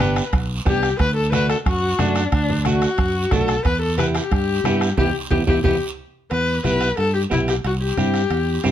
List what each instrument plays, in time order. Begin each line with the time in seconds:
Already playing: fingered electric bass G1, viola B4
0.00 clean electric guitar B3 D4 G4, bombo rim, high timbale, short guiro
0.16 bombo rim, high timbale, short guiro
0.33 fingered electric bass B1, bombo low, bombo rim, high conga, high timbale, long guiro
0.65 fingered electric bass C2, clean electric guitar B3 D4 G4, viola G4, bombo low, bombo rim, high conga, low conga, high timbale, short guiro
0.83 bombo rim, high timbale, short guiro
0.99 fingered electric bass D2, viola B4, bombo low, bombo rim, high conga, high timbale, long guiro
1.16 viola A4
1.32 clean electric guitar A3 D4 F#4, viola B4, bombo rim, high conga, high timbale, short guiro
1.49 viola A4, bombo rim, high timbale, short guiro
1.66 fingered electric bass F#2, viola F#4, bombo low, bombo rim, high conga, high timbale, long guiro
1.99 fingered electric bass F#2, clean electric guitar A3 D4 F#4, viola D4, bombo rim, high conga, high timbale, low timbale, short guiro
2.15 bombo rim, high timbale, short guiro
2.32 fingered electric bass D2, viola D4, bombo low, bombo rim, high conga, high timbale, long guiro
2.50 low conga
2.65 clean electric guitar A3 D4 F#4, viola F#4, bombo rim, high conga, high timbale, short guiro
2.82 bombo rim, high timbale, short guiro
2.98 fingered electric bass F#2, bombo low, bombo rim, high conga, high timbale, long guiro
3.31 fingered electric bass B1, clean electric guitar A3 D4 F#4, viola A4, bombo low, bombo rim, high conga, low conga, high timbale, low timbale, short guiro
3.48 bombo rim, high timbale, short guiro
3.65 fingered electric bass E2, viola B4, bombo low, bombo rim, high conga, high timbale, long guiro
3.82 viola A4
3.98 clean electric guitar B3 E4 G4, viola B4, bombo rim, high conga, high timbale, short guiro
4.15 viola G4, bombo rim, high timbale, short guiro
4.31 fingered electric bass G2, bombo low, bombo rim, high conga, high timbale, long guiro
4.64 fingered electric bass G2, clean electric guitar B3 E4 G4, bombo rim, high conga, high timbale, low timbale, short guiro
4.81 bombo rim, high timbale, short guiro
4.97 fingered electric bass E2, clean electric guitar B3 E4 G4, viola G4, bombo low, high conga, high timbale, long guiro
5.30 fingered electric bass E2, clean electric guitar B3 E4 G4, viola G4, bombo low, high conga, high timbale
5.47 fingered electric bass E2, clean electric guitar B3 E4 G4, viola G4, bombo low, high conga, high timbale, long guiro
5.63 fingered electric bass E2, clean electric guitar B3 E4 G4, viola G4, bombo low, high conga, high timbale, long guiro
6.31 fingered electric bass E2, viola B4, high conga, high timbale, long guiro
6.64 fingered electric bass B1, clean electric guitar B3 E4 G4, viola B4, high conga, high timbale, short guiro
6.81 high timbale, short guiro
6.97 fingered electric bass G2, viola A4, high conga, high timbale, long guiro
7.14 viola G4
7.30 fingered electric bass B1, clean electric guitar B3 E4 G4, viola E4, high conga, high timbale, short guiro
7.48 viola G4, high timbale, short guiro
7.64 fingered electric bass C2, viola F#4, high conga, high timbale, long guiro
7.82 viola G4
7.97 fingered electric bass G2, clean electric guitar C4 E4 G4, high conga, high timbale, short guiro
8.14 high timbale, short guiro
8.30 fingered electric bass E2, high conga, high timbale, long guiro
8.64 fingered electric bass G2, clean electric guitar C4 E4 G4, high conga, high timbale, low timbale, short guiro